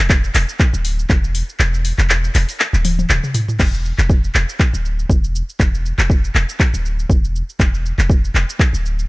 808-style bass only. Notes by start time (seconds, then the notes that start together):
0.00 E1
0.35 E1
0.74 D1
1.10 E1
1.60 E1
1.98 E1
2.35 E1
2.73 D1
3.10 D1
3.60 E1
3.99 E1
4.35 E1
4.74 D1
5.09 E1
5.60 E1
5.98 E1
6.35 E1
6.74 D1
7.09 E1
7.60 E1
7.98 E1
8.34 E1
8.73 D1